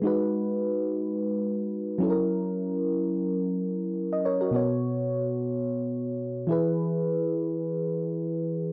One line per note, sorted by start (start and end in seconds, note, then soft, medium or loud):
0.02 1.96 G#3 medium
0.02 1.96 D#4 medium
0.02 1.97 F#4 medium
0.07 1.98 B4 medium
1.98 3.92 F#3 medium
1.98 3.93 C#4 medium
1.98 3.94 E4 medium
2.03 2.09 A4 medium
2.10 3.70 A#4 medium
4.12 4.24 D#5 medium
4.25 4.39 A#4 medium
4.25 4.40 C#5 medium
4.41 4.53 F#4 medium
4.41 4.67 A#4 medium
4.51 6.44 B2 medium
4.51 6.45 B3 medium
4.51 6.46 F#4 medium
4.56 6.47 C#5 medium
6.47 8.68 E3 medium
6.47 8.69 E4 medium
6.47 8.70 G#4 medium
6.52 8.71 B4 medium